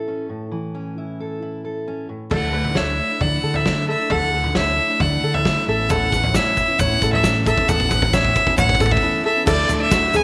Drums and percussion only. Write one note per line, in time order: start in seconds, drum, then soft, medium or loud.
2.31 kick soft
2.31 floor tom medium
2.31 crash medium
2.65 floor tom medium
2.75 kick soft
2.75 snare medium
3.21 kick soft
3.21 floor tom medium
3.54 floor tom medium
3.66 kick medium
3.66 snare medium
4.10 kick medium
4.10 floor tom medium
4.44 floor tom medium
4.55 kick medium
4.55 snare medium
5.00 kick medium
5.00 floor tom medium
5.34 floor tom medium
5.45 kick medium
5.45 snare loud
5.89 kick medium
5.89 floor tom loud
5.89 shaker medium
6.12 kick medium
6.12 shaker medium
6.24 floor tom medium
6.34 kick medium
6.34 snare loud
6.34 shaker loud
6.57 kick medium
6.57 shaker medium
6.79 kick medium
6.79 floor tom loud
6.79 shaker medium
7.02 kick medium
7.02 shaker medium
7.13 floor tom medium
7.24 kick medium
7.24 snare loud
7.24 shaker medium
7.46 kick medium
7.46 shaker medium
7.58 kick loud
7.69 kick loud
7.69 floor tom loud
7.69 shaker medium
7.80 kick loud
7.91 kick medium
7.91 shaker medium
8.02 kick loud
8.02 floor tom medium
8.13 kick loud
8.13 snare loud
8.13 shaker medium
8.25 kick medium
8.36 kick loud
8.36 shaker medium
8.47 kick loud
8.58 kick loud
8.58 floor tom loud
8.58 shaker medium
8.69 kick loud
8.75 kick loud
8.80 kick loud
8.80 shaker medium
8.86 kick loud
8.91 kick loud
8.91 floor tom medium
8.97 kick loud
9.47 kick loud
9.47 floor tom loud
9.47 crash loud
9.47 shaker medium
9.69 floor tom medium
9.69 shaker medium
9.91 kick loud
9.91 snare loud
9.91 floor tom medium
9.91 shaker medium
10.13 floor tom medium
10.13 shaker medium